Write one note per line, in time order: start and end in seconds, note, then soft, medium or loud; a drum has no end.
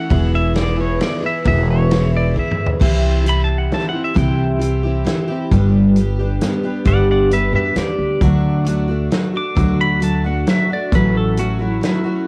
0.00 0.10 E3 medium
0.00 0.11 E4 medium
0.00 0.11 A4 medium
0.00 0.31 F#5 loud
0.10 0.97 E1 loud
0.10 0.53 E3 medium
0.10 0.54 B3 medium
0.10 0.55 E4 medium
0.10 0.56 G#4 medium
0.10 kick loud
0.10 ride medium
0.35 0.57 E5 medium
0.54 0.77 E3 medium
0.54 0.78 B3 medium
0.54 0.76 E4 medium
0.54 0.75 G#4 medium
0.54 0.79 D5 medium
0.54 snare medium
0.54 ride medium
0.76 0.99 B3 soft
0.76 1.00 E4 medium
0.76 0.99 G#4 soft
0.80 1.00 C#5 medium
0.98 1.22 E3 medium
0.98 1.23 B3 medium
0.98 1.21 E4 medium
0.98 1.19 G#4 medium
0.98 snare medium
0.98 ride medium
1.03 1.25 D5 medium
1.20 1.44 B3 soft
1.20 1.44 E4 soft
1.20 1.44 G#4 medium
1.26 1.46 E5 medium
1.44 2.32 E1 loud
1.44 1.88 E3 medium
1.44 1.89 B3 medium
1.44 1.90 E4 medium
1.44 1.91 G#4 medium
1.44 1.70 E5 medium
1.44 kick medium
1.44 ride medium
1.70 2.11 C#5 medium
1.89 2.33 E3 medium
1.89 2.34 B3 medium
1.89 2.35 E4 medium
1.89 2.36 G#4 medium
1.89 snare medium
1.89 ride medium
2.17 2.36 D5 medium
2.34 2.78 E3 medium
2.34 2.80 B3 medium
2.34 2.80 E4 medium
2.34 2.81 G#4 medium
2.34 kick medium
2.39 2.69 E5 medium
2.51 mid tom medium
2.66 floor tom medium
2.79 3.67 C2 medium
2.79 3.25 C3 medium
2.79 3.23 E3 medium
2.79 3.24 C4 medium
2.79 3.25 E4 medium
2.79 3.27 G4 medium
2.79 kick loud
2.79 crash loud
3.24 3.70 E3 medium
3.24 3.70 C4 medium
3.24 3.71 E4 medium
3.24 3.73 G4 medium
3.24 closed hi-hat medium
3.29 3.42 B5 loud
3.44 3.57 A5 medium
3.58 3.72 F#5 medium
3.71 3.93 E3 medium
3.71 3.94 C4 medium
3.71 3.92 E4 medium
3.71 3.90 G4 medium
3.71 3.87 A5 medium
3.71 snare medium
3.71 closed hi-hat medium
3.89 4.15 G4 soft
3.89 4.02 F#5 medium
3.93 4.14 C4 soft
3.93 4.15 E4 soft
4.04 4.17 E5 medium
4.14 5.02 C2 medium
4.14 4.60 C3 medium
4.14 4.58 E3 medium
4.14 4.59 C4 medium
4.14 4.60 E4 medium
4.14 4.62 G4 loud
4.14 kick loud
4.14 closed hi-hat medium
4.18 5.48 G5 loud
4.59 4.83 E3 medium
4.59 4.83 C4 medium
4.59 4.84 E4 medium
4.59 4.82 G4 medium
4.59 closed hi-hat medium
4.83 5.04 C4 soft
4.83 5.06 E4 soft
4.83 5.06 G4 medium
5.04 5.28 E3 medium
5.04 5.28 C4 medium
5.04 5.28 E4 medium
5.04 5.27 G4 medium
5.04 snare medium
5.04 closed hi-hat medium
5.28 5.52 C4 medium
5.28 5.52 E4 medium
5.28 5.51 G4 medium
5.51 6.37 G1 loud
5.51 5.96 G2 medium
5.51 5.96 D3 medium
5.51 5.96 G3 medium
5.51 5.97 B3 loud
5.51 5.99 D4 medium
5.51 5.97 G4 medium
5.51 kick loud
5.51 closed hi-hat medium
5.96 6.19 G3 medium
5.96 6.20 B3 medium
5.96 6.19 D4 medium
5.96 closed hi-hat medium
6.00 6.18 G4 medium
6.19 6.39 G3 soft
6.19 6.41 B3 soft
6.19 6.41 D4 medium
6.19 6.41 G4 medium
6.41 6.63 G3 medium
6.41 6.64 B3 medium
6.41 6.63 D4 medium
6.41 6.62 G4 medium
6.41 snare medium
6.41 closed hi-hat medium
6.63 6.84 G3 soft
6.63 6.85 B3 soft
6.63 6.85 D4 medium
6.63 6.86 G4 medium
6.85 7.50 G1 loud
6.85 7.31 G2 medium
6.85 7.31 D3 medium
6.85 7.29 G3 medium
6.85 7.30 B3 medium
6.85 7.32 D4 medium
6.85 7.32 G4 medium
6.85 7.09 D5 medium
6.85 7.09 F#5 loud
6.85 kick loud
6.85 closed hi-hat medium
7.11 7.31 D5 medium
7.11 7.32 F#5 medium
7.30 7.53 G3 medium
7.30 7.53 B3 medium
7.30 7.52 D4 medium
7.30 7.51 G4 medium
7.30 7.53 B4 medium
7.30 7.54 E5 loud
7.30 closed hi-hat medium
7.53 7.74 F#2 medium
7.53 7.74 G3 soft
7.53 7.75 B3 soft
7.53 7.76 D4 soft
7.53 7.76 G4 soft
7.53 7.75 B4 medium
7.53 7.77 E5 medium
7.75 7.96 E2 medium
7.75 8.21 G3 medium
7.75 8.21 B3 medium
7.75 8.22 D4 medium
7.75 8.22 G4 medium
7.75 9.08 D5 loud
7.75 snare medium
7.75 closed hi-hat medium
7.98 8.19 D2 medium
8.21 9.07 D2 loud
8.21 8.66 D3 medium
8.21 8.64 F#3 medium
8.21 8.66 A3 medium
8.21 8.66 D4 medium
8.21 8.68 F#4 medium
8.21 kick loud
8.21 closed hi-hat medium
8.65 8.88 F#3 medium
8.65 8.89 A3 medium
8.65 8.88 D4 medium
8.65 8.87 F#4 medium
8.65 closed hi-hat medium
8.88 9.10 A3 soft
8.88 9.11 D4 medium
8.88 9.11 F#4 medium
9.10 9.34 F#3 medium
9.10 9.34 A3 medium
9.10 9.34 D4 medium
9.10 9.32 F#4 medium
9.10 snare medium
9.10 closed hi-hat medium
9.33 9.55 A3 soft
9.33 9.56 D4 medium
9.33 9.56 F#4 soft
9.33 9.79 D6 medium
9.55 10.43 D2 loud
9.55 10.01 D3 medium
9.55 10.00 F#3 medium
9.55 10.01 A3 medium
9.55 10.01 D4 medium
9.55 10.03 F#4 loud
9.55 kick loud
9.55 closed hi-hat medium
9.81 10.02 B5 medium
10.00 10.23 F#3 medium
10.00 10.24 A3 medium
10.00 10.25 D4 medium
10.00 10.23 F#4 medium
10.00 10.24 A5 loud
10.00 closed hi-hat medium
10.24 10.46 A3 soft
10.24 10.48 D4 soft
10.24 10.47 F#4 medium
10.24 10.47 F#5 medium
10.46 10.69 F#3 medium
10.46 10.70 A3 medium
10.46 10.70 D4 medium
10.46 10.69 F#4 medium
10.46 10.70 E5 loud
10.46 snare medium
10.46 closed hi-hat medium
10.70 10.92 A3 soft
10.70 10.93 D4 medium
10.70 10.92 F#4 medium
10.70 10.93 D5 medium
10.92 11.78 A1 loud
10.92 11.37 A2 medium
10.92 11.38 E3 medium
10.92 11.37 F#3 medium
10.92 11.37 A3 medium
10.92 11.38 C#4 medium
10.92 11.40 F#4 medium
10.92 11.15 B4 loud
10.92 kick loud
10.92 closed hi-hat medium
11.17 11.38 A4 loud
11.37 11.60 F#3 medium
11.37 11.60 A3 medium
11.37 11.59 C#4 medium
11.37 11.60 F#4 loud
11.37 11.58 F#4 medium
11.37 closed hi-hat medium
11.59 11.80 F#3 soft
11.59 11.81 A3 soft
11.59 11.82 C#4 medium
11.59 11.82 E4 medium
11.59 11.82 F#4 medium
11.81 12.04 F#3 medium
11.81 12.05 A3 medium
11.81 12.04 C#4 medium
11.81 12.27 E4 loud
11.81 12.03 F#4 medium
11.81 snare medium
11.81 closed hi-hat medium
12.04 12.27 F#3 soft
12.04 12.27 A3 soft
12.04 12.27 C#4 medium
12.04 12.27 F#4 medium